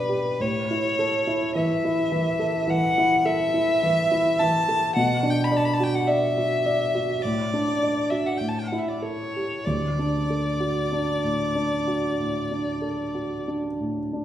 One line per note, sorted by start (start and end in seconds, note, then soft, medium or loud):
0.00 0.36 B2 medium
0.00 0.43 D4 soft
0.00 0.09 G4 soft
0.00 0.43 B4 medium
0.00 0.44 D5 soft
0.09 0.40 G4 soft
0.40 2.63 A2 soft
0.40 1.55 C#5 medium
0.71 1.16 E4 soft
0.99 1.45 A4 soft
1.27 1.73 E4 soft
1.55 2.00 E3 soft
1.55 2.71 E5 medium
1.85 2.29 E4 soft
2.12 2.56 E3 soft
2.39 2.84 A4 soft
2.68 3.12 E3 soft
2.68 3.27 F#5 medium
2.98 3.42 E4 soft
3.25 3.70 A4 soft
3.25 4.41 E5 medium
3.54 3.99 E4 soft
3.83 4.27 E3 soft
4.11 4.56 E4 soft
4.39 4.84 E3 soft
4.39 4.95 A5 medium
4.68 4.95 A4 soft
4.96 7.18 B2 medium
4.96 5.32 F#5 medium
5.23 5.67 D4 soft
5.30 5.45 G5 medium
5.44 5.58 B5 medium
5.52 5.96 D5 medium
5.57 5.67 A5 medium
5.65 5.75 B5 medium
5.74 5.85 A5 medium
5.80 6.24 F#4 medium
5.80 5.97 G5 medium
5.95 6.09 F#5 medium
6.07 6.52 D5 soft
6.07 7.24 E5 medium
6.37 6.82 F#4 soft
6.66 7.10 D5 soft
6.95 7.22 F#4 soft
7.22 8.38 A2 medium
7.22 8.11 D5 medium
7.54 7.99 D4 soft
7.83 8.29 D5 soft
8.10 8.40 F#4 soft
8.10 8.28 E5 medium
8.26 8.39 F#5 soft
8.38 9.61 A2 soft
8.38 8.50 G5 soft
8.49 8.60 A5 soft
8.59 8.69 G5 soft
8.68 8.80 F#5 soft
8.72 9.21 E4 soft
8.78 8.90 E5 soft
8.89 9.04 D5 soft
9.02 9.52 A4 soft
9.02 9.66 C#5 medium
9.36 9.66 G4 soft
9.65 12.16 D2 soft
9.65 13.48 D5 medium
9.99 10.48 D4 soft
10.30 10.79 A4 soft
10.60 11.10 F#4 soft
10.92 11.42 D4 soft
11.24 11.74 A2 soft
11.55 12.06 D4 soft
11.87 12.38 F#4 soft
12.19 12.70 A2 soft
12.51 13.02 D4 soft
12.82 13.34 A4 soft
13.15 13.66 F#4 soft
13.48 13.99 D4 soft
13.80 14.25 A2 soft
14.13 14.25 D4 soft